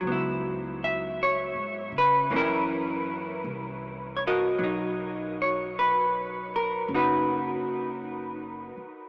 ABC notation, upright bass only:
X:1
M:4/4
L:1/8
Q:"Swing" 1/4=53
K:Bphr
V:1 name="Upright bass" clef=bass
^C,,2- (3C,, ^G,, ^C, F,,2 =C,,2 | B,,,4 F,,,3 z |]